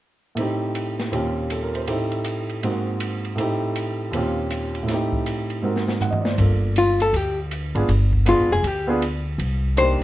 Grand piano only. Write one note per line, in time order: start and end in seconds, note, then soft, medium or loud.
0.35 1.11 A2 soft
0.35 1.12 A3 soft
0.35 1.11 C4 soft
0.35 1.13 D#4 soft
0.41 1.11 G4 medium
1.11 1.87 D#2 soft
1.11 1.87 A#2 soft
1.11 1.87 C4 soft
1.11 1.87 C#4 soft
1.11 1.88 F4 soft
1.11 1.87 G4 medium
1.52 1.73 A4 soft
1.63 1.82 A#4 soft
1.75 1.94 C5 soft
1.88 2.63 A2 soft
1.88 2.63 A3 soft
1.88 2.63 C4 soft
1.88 2.63 D#4 soft
1.88 2.63 G4 medium
2.63 3.38 G#2 soft
2.63 3.38 G#3 soft
2.63 3.39 A#3 soft
2.63 3.37 C4 soft
2.63 3.39 F#4 soft
3.35 4.12 A2 soft
3.35 4.12 A3 soft
3.35 4.12 C4 soft
3.35 4.14 D#4 soft
3.41 4.14 G4 medium
4.11 4.87 D#2 medium
4.11 4.88 A#2 soft
4.11 4.87 C4 soft
4.11 4.89 C#4 soft
4.15 4.89 F4 soft
4.15 4.90 G4 medium
4.83 5.61 A2 soft
4.83 5.62 A3 soft
4.89 5.62 C4 soft
4.89 5.65 D#4 soft
4.94 5.66 G4 medium
5.62 6.38 G#2 soft
5.62 6.38 G#3 soft
5.62 6.38 C4 soft
5.62 6.38 F#4 soft
5.62 6.39 A#4 soft
6.02 6.18 F#5 soft
6.11 6.26 D#5 soft
6.21 6.32 D5 soft
6.30 6.43 C5 soft
6.38 6.95 A#3 soft
6.38 6.95 D4 soft
6.38 6.96 F4 soft
6.38 6.96 A4 soft
7.75 7.87 B3 medium
7.75 7.87 D4 medium
7.75 7.88 F4 medium
7.75 7.88 G#4 medium
8.25 8.48 B3 medium
8.25 8.48 D4 soft
8.25 8.48 F4 soft
8.25 8.49 G#4 medium
8.87 9.00 B3 medium
8.87 9.00 D4 medium
8.87 9.00 F4 medium
8.87 9.01 G#4 medium
9.76 9.98 A#3 medium
9.76 9.99 D4 soft
9.76 9.99 D#4 soft
9.76 9.99 G4 medium